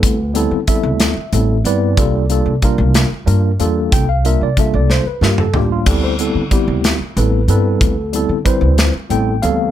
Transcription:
<<
  \new Staff \with { instrumentName = "Tine electric piano" } { \time 6/8 \key d \minor \tempo 4. = 62 << { b'8 r8 e''4. d''8~ | d''4 r2 | g''16 f''16 e''16 d''16 e''16 d''16 c''16 b'16 bes'16 a'16 g'16 f'16 | g'16 c''16 r4. b'8 a'8~ |
a'4 r4 g''8 f''8 | } \\ { <g b c' e' a'>8 <g b c' e' a'>8 <g b c' e' a'>8 r8 <g b c' e' a'>8 <g b c' e' b'>8 | <g bes d' f' a'>8 <g bes d' f' a'>8 <g bes d' f' bes'>8 r8 <g bes d' f' bes'>8 <g bes d' f' a'>8 | r8 <g bes d' f' bes'>8 <g bes d' f' a'>8 r8 <g bes d' f' g'>8 <g bes d' f'>8 | <g b c' e' a'>8 <g b c' e' a'>8 <g b c' e' g'>8 r8 <g b c' e' a'>8 <g b c' e' b'>8 |
r8 <g b c' e' a'>8 <g c' e' b' c''>8 r8 <g b c' e' a'>8 <e g b c' a'>8 | } >> }
  \new Staff \with { instrumentName = "Upright bass" } { \clef bass \time 6/8 \key d \minor d,8. d8 d,8 r16 a,,8 g,8 | c,8. c8 c,8 r16 g,8 e,8 | c,8. c8 c,8 r16 g,8 a,,8 | d,8. d8 d,8 r16 a,,8 g,8 |
d,8. d8 d,8 r16 a,,8 d,8 | }
  \new DrumStaff \with { instrumentName = "Drums" } \drummode { \time 6/8 <hh bd>8 hh8 <hh bd>8 <hh sn>8 hh8 hh8 | <hh bd>8 hh8 <hh bd>8 <hh sn>8 hh8 hh8 | <hh bd>8 hh8 <hh bd>8 sn8 sn16 toml16 tomfh8 | <cymc hh bd>8 hh8 <hh bd>8 <hh sn>8 hh8 hh8 |
<hh bd>8 hh8 <hh bd>8 <hh sn>8 hh8 hh8 | }
>>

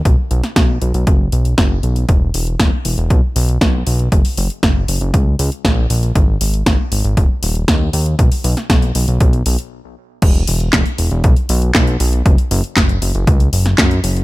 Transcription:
<<
  \new Staff \with { instrumentName = "Analog synth bass" } { \clef bass \time 4/4 \key e \lydian \tempo 4 = 118 b,,16 r16 b,,16 r16 b,,8 b,,16 b,,16 fis,,8 b,,8 fis,,8 b,,8 | e,,8 e,,8 e,,16 r16 e,,16 e,,16 b,,16 r16 b,,8 b,,8 b,,8 | fis,,16 r16 fis,,16 r16 fis,,8 fis,,16 fis,,16 cis,8 cis,16 r16 ais,,8 ais,,8 | gis,,8 gis,,8 gis,,16 r16 gis,,16 gis,,16 dis,,16 r16 dis,,8 dis,8 dis,8 |
b,,16 r16 b,,16 r16 b,,8 b,,16 b,,16 b,,8 b,,16 r4 r16 | e,,8 e,,8 e,,16 r16 e,,16 e,,16 b,,16 r16 b,,8 b,,8 b,,8 | fis,,16 r16 fis,,16 r16 fis,,8 fis,,16 fis,,16 cis,8 fis,,8 fis,8 fis,,8 | }
  \new DrumStaff \with { instrumentName = "Drums" } \drummode { \time 4/4 <hh bd>8 hh16 <hh sn>16 <hh bd sn>8 hh16 hh16 <hh bd>8 hh16 hh16 <hh bd sn>8 hh16 hh16 | <hh bd>8 hho16 hh16 <hh bd sn>8 hho16 hh16 <hh bd>8 hho16 hh16 <hh bd sn>8 hho16 hh16 | <hh bd>16 hho16 hho16 hh16 <hh bd sn>8 hho16 hh16 <hh bd>8 hho16 hh16 <hh bd sn>8 hho16 hh16 | <hh bd>8 hho16 hh16 <hh bd sn>8 hho16 hh16 <hh bd>8 hho16 hh16 <hh bd sn>8 hho16 hh16 |
<hh bd>16 hho16 hho16 <hh sn>16 <hh bd sn>16 hh16 hho16 hh16 <hh bd>16 hh16 hho16 hh16 r4 | <cymc hh bd>16 hh16 hho16 hh16 <hc hh bd sn>16 hh16 hho16 hh16 <hh bd>16 hh16 hho16 hh16 <hc hh bd sn>16 hh16 hho16 hh16 | <hh bd>16 hh16 hho16 hh16 <hc hh bd sn>16 hh16 hho16 hh16 <hh bd>16 hh16 hho16 <hh sn>16 <hc hh bd sn>16 hh16 hho16 hh16 | }
>>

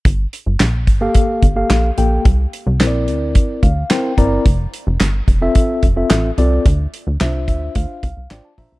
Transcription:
<<
  \new Staff \with { instrumentName = "Tine electric piano" } { \time 4/4 \key g \dorian \tempo 4 = 109 << { r1 | r2 r8 f''8 g''8 bes''8 | r1 | r4. e''8 f''8 f''8 r16 a''16 bes''8 | } \\ { r4. r16 <bes g' a' f''>8. r16 <bes g' a' f''>8 r16 <bes g' a' g''>8 | r4 <c' e' bes' c'' d''>4. r8 <c' e' bes' c''>8 <c' e' bes' d''>8 | r4. r16 <c' f' a' e''>8. r16 <c' f' a' e''>8 r16 <c' f' a' d''>8 | r4 <d' f' c'' e''>4. r8 <d' f' c'' d''>8 <d' f' c'' e''>8 | } >> }
  \new Staff \with { instrumentName = "Analog synth bass" } { \clef bass \time 4/4 \key g \dorian g,,8 r16 g,,16 bes,,8 g,,8 r8 g,,8 bes,,8 bes,,8 | c,8 r16 c,16 bes,,8 d,8. r16 d,8 r8 g,,8 | f,,8 r16 f,,16 g,,8 f,,8 r8 f,,8 a,,8 c,8 | d,8 r16 d,16 c,8 d,8 d,16 r16 c,16 c,16 a,,16 r16 bes,,16 c,16 | }
  \new DrumStaff \with { instrumentName = "Drums" } \drummode { \time 4/4 <hh bd>8 hh8 <hc hh sn>8 <hh bd>8 <hh bd>8 <hh bd>8 <hc hh sn>8 hh8 | <hh bd>8 hh8 <hc hh sn>8 hh8 <hh bd>8 <hh bd>8 <hc hh sn>8 <hh bd>8 | <hh bd>8 hh8 <hc hh sn>8 <hh bd>8 <hh bd>8 <hh bd>8 <hc hh sn>8 hh8 | <hh bd>8 hh8 <hc hh sn>8 <hh bd>8 <hh bd>8 <hh bd>8 <hc hh sn>8 <hho bd>8 | }
>>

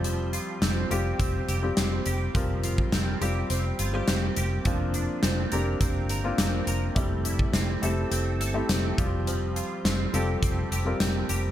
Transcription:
<<
  \new Staff \with { instrumentName = "Grand piano" } { \time 4/4 \key f \major \tempo 4 = 104 <g c' f' g'>4 r8 <g c' f' g'>4 r16 <g c' f' g'>4 r16 | <g c' f' bes'>4 r8 <g c' f' g'>4 r16 <g c' f' g'>4 r16 | <bes c' d' f'>4 r8 <bes c' d' g'>4 r16 <bes c' d' f'>4 r16 | <a c' e' g'>4 r8 <a c' e' g'>4 r16 <a c' e' g'>8. <g c' f' g'>8~ |
<g c' f' g'>4 r8 <g c' f' a'>4 r16 <g c' f' bes'>4 r16 | }
  \new Staff \with { instrumentName = "Clean electric guitar" } { \time 4/4 \key f \major f8 f'8 c'8 g'8 c'8 g'8 c'8 g'8 | f8 f'8 c'8 g'8 c'8 f'16 g'16 c'8 g'8 | f8 d'8 c'8 bes'8 c'8 bes'8 c'8 bes'8 | g8 e'8 c'8 a'8 c'8 a'8 c'8 f8 |
f8 f'8 c'8 g'8 c'8 g'8 c'8 g'8 | }
  \new Staff \with { instrumentName = "Fingered electric bass" } { \clef bass \time 4/4 \key f \major f,,4 f,,8 f,,8 f,,8 f,,8 f,,8 f,,8 | f,,4 f,,8 f,,8 f,,8 g,,8 f,,8 f,,8 | f,,4 f,,8 f,,8 f,,8 g,,8 f,,8 f,,8 | f,,4 f,,8 f,,8 f,,8 g,,8 f,,8 f,,8~ |
f,,4 f,,8 f,,8 f,,8 f,,8 f,,8 f,,8 | }
  \new DrumStaff \with { instrumentName = "Drums" } \drummode { \time 4/4 hh8 hh8 <hh sn>8 hh8 <hh bd>8 hh8 <hh sn>8 hh8 | <hh bd>8 hh16 bd16 <hh sn>8 hh8 hh8 hh8 <hh sn>8 hh8 | <hh bd>8 hh8 <hh sn>8 hh8 <hh bd>8 hh8 <hh sn>8 hh8 | <hh bd>8 hh16 bd16 <hh sn>8 hh8 hh8 hh8 <hh sn>8 <hh bd>8 |
hh8 hh8 <hh sn>8 hh8 <hh bd>8 hh8 <hh sn>8 hh8 | }
>>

